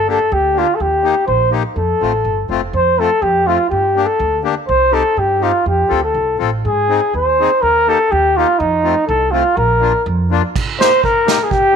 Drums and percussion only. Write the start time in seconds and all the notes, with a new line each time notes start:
10.56 kick, crash
10.81 snare, hi-hat pedal
11.04 kick
11.28 snare, hi-hat pedal
11.51 kick